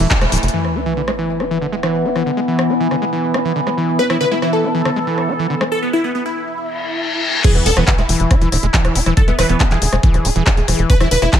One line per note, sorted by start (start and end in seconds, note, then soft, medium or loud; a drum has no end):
0.00 0.53 E3 medium
0.00 0.56 A3 medium
0.00 0.45 E4 loud
0.11 0.16 D3 medium
0.11 kick loud
0.11 clap loud
0.11 closed hi-hat medium
0.21 0.28 E1 medium
0.21 0.24 G#3 medium
0.21 cross-stick medium
0.21 closed hi-hat medium
0.32 0.38 D1 loud
0.32 0.37 E3 medium
0.32 closed hi-hat medium
0.32 open hi-hat loud
0.38 closed hi-hat medium
0.43 0.49 F1 medium
0.43 closed hi-hat medium
0.48 closed hi-hat medium
0.54 0.77 E3 medium
0.54 5.72 E3 medium
0.54 5.72 B3 medium
0.54 sub drop medium
0.65 cross-stick soft
0.75 0.80 E4 medium
0.86 0.94 E3 loud
0.91 5.72 E4 medium
0.97 1.02 D3 medium
1.08 1.11 G#3 medium
1.08 cross-stick medium
1.18 1.42 E3 medium
1.38 1.45 E4 medium
1.38 4.86 E5 medium
1.38 cross-stick soft
1.46 5.72 B5 medium
1.51 1.58 E3 loud
1.62 1.67 D3 medium
1.72 1.75 G#3 medium
1.83 2.06 E3 medium
1.83 cross-stick medium
2.05 2.10 E4 medium
2.16 2.23 E3 loud
2.16 cross-stick soft
2.26 2.31 D3 medium
2.37 2.40 G#3 medium
2.48 2.71 E3 medium
2.59 cross-stick medium
2.70 2.75 E4 medium
2.80 2.88 E3 loud
2.91 2.96 D3 medium
2.91 cross-stick soft
3.02 3.05 G#3 medium
3.13 3.36 E3 medium
3.34 3.39 E4 medium
3.34 cross-stick medium
3.45 3.53 E3 loud
3.56 3.61 D3 medium
3.67 3.70 G#3 medium
3.67 cross-stick soft
3.77 4.01 E3 medium
3.99 4.04 E4 medium
3.99 4.06 B4 loud
4.10 4.17 E3 loud
4.10 4.17 E4 medium
4.10 cross-stick medium
4.21 4.26 D3 medium
4.21 4.28 B4 loud
4.31 4.34 G#3 medium
4.31 4.39 E4 medium
4.42 4.65 E3 medium
4.42 4.49 E4 medium
4.42 cross-stick soft
4.53 5.63 A4 loud
4.64 4.69 E4 medium
4.73 4.82 E3 loud
4.73 5.72 D5 medium
4.85 4.90 D3 medium
4.85 cross-stick medium
4.96 4.99 G#3 medium
5.07 5.30 E3 medium
5.18 cross-stick soft
5.29 5.34 E4 medium
5.39 5.47 E3 loud
5.50 5.55 D3 medium
5.61 5.64 G#3 medium
5.61 cross-stick medium
5.72 5.79 A4 loud
5.83 5.90 B3 medium
5.93 6.00 E4 loud
6.04 6.11 B3 medium
6.15 6.22 B3 medium
6.26 7.36 E4 loud
6.58 reverse cymbal medium
7.44 7.67 E3 medium
7.44 7.52 G#4 loud
7.44 kick loud
7.44 cross-stick soft
7.44 closed hi-hat medium
7.44 crash loud
7.44 sub drop medium
7.55 7.61 E1 medium
7.55 7.62 B3 medium
7.55 closed hi-hat medium
7.66 7.72 E1 loud
7.66 7.73 B3 medium
7.66 7.71 E4 medium
7.66 7.73 A4 loud
7.66 open hi-hat loud
7.77 7.83 E1 loud
7.77 7.84 E3 loud
7.77 7.84 B3 medium
7.77 cross-stick medium
7.77 closed hi-hat medium
7.82 11.30 E5 medium
7.87 7.93 D3 medium
7.87 7.95 B3 medium
7.87 kick loud
7.87 clap loud
7.87 closed hi-hat medium
7.98 8.05 E1 medium
7.98 8.01 G#3 medium
7.98 9.08 E4 loud
7.98 cross-stick soft
7.98 closed hi-hat medium
8.09 8.15 E1 loud
8.09 8.32 E3 medium
8.09 open hi-hat loud
8.20 8.26 E1 medium
8.20 closed hi-hat medium
8.31 8.36 E4 medium
8.31 kick loud
8.31 cross-stick medium
8.31 closed hi-hat medium
8.41 8.48 E1 medium
8.41 8.49 E3 loud
8.41 closed hi-hat medium
8.52 8.59 D1 loud
8.52 8.57 D3 medium
8.52 cross-stick soft
8.52 open hi-hat loud
8.63 8.69 E1 medium
8.63 8.66 G#3 medium
8.63 closed hi-hat medium
8.74 8.97 E3 medium
8.74 kick loud
8.74 clap loud
8.74 closed hi-hat medium
8.85 8.91 E1 medium
8.85 cross-stick medium
8.85 closed hi-hat medium
8.95 9.02 E1 medium
8.95 9.01 E4 medium
8.95 9.02 E4 medium
8.95 open hi-hat loud
9.06 9.13 E1 medium
9.06 9.14 E3 loud
9.06 9.13 E4 medium
9.06 cross-stick soft
9.06 closed hi-hat medium
9.17 9.22 D3 medium
9.17 9.24 A4 loud
9.17 kick loud
9.17 closed hi-hat medium
9.28 9.34 E1 medium
9.28 9.31 G#3 medium
9.28 9.35 B3 medium
9.28 9.36 E4 medium
9.28 closed hi-hat medium
9.39 9.45 E1 loud
9.39 9.62 E3 medium
9.39 9.99 E4 loud
9.39 9.46 B4 loud
9.39 cross-stick medium
9.39 open hi-hat loud
9.49 9.56 E1 loud
9.49 9.57 B3 medium
9.49 closed hi-hat medium
9.60 9.67 B3 medium
9.60 9.65 E4 medium
9.60 kick loud
9.60 cross-stick soft
9.60 clap loud
9.60 closed hi-hat medium
9.71 9.77 E1 medium
9.71 9.79 E3 loud
9.71 10.81 G#4 loud
9.71 clap soft
9.71 closed hi-hat medium
9.82 9.88 E1 loud
9.82 9.87 D3 medium
9.82 open hi-hat loud
9.93 9.99 E1 medium
9.93 9.96 G#3 medium
9.93 cross-stick medium
9.93 closed hi-hat medium
10.03 10.26 E3 medium
10.03 kick loud
10.03 closed hi-hat medium
10.14 10.20 E1 medium
10.14 cross-stick soft
10.14 closed hi-hat medium
10.25 10.31 D1 loud
10.25 10.30 E4 medium
10.25 open hi-hat loud
10.36 10.42 E1 medium
10.36 10.43 E3 loud
10.36 closed hi-hat medium
10.46 10.52 D3 medium
10.46 kick loud
10.46 cross-stick medium
10.46 clap loud
10.46 closed hi-hat medium
10.57 10.64 E1 medium
10.57 10.60 G#3 medium
10.57 closed hi-hat medium
10.68 10.74 E1 loud
10.68 10.91 E3 medium
10.68 cross-stick soft
10.68 open hi-hat loud
10.79 10.85 E1 medium
10.79 closed hi-hat medium
10.90 10.95 E4 medium
10.90 10.97 B4 loud
10.90 kick loud
10.90 closed hi-hat medium
11.00 11.07 E1 medium
11.00 11.08 E3 loud
11.00 11.08 E4 medium
11.00 cross-stick medium
11.00 closed hi-hat medium
11.11 11.18 E1 loud
11.11 11.16 D3 medium
11.11 11.18 B4 loud
11.11 open hi-hat loud
11.22 11.28 E1 medium
11.22 11.25 G#3 medium
11.22 11.29 E4 medium
11.22 cross-stick soft
11.22 closed hi-hat soft
11.33 11.40 E3 medium
11.33 11.40 E4 medium
11.33 kick loud
11.33 clap loud
11.33 closed hi-hat medium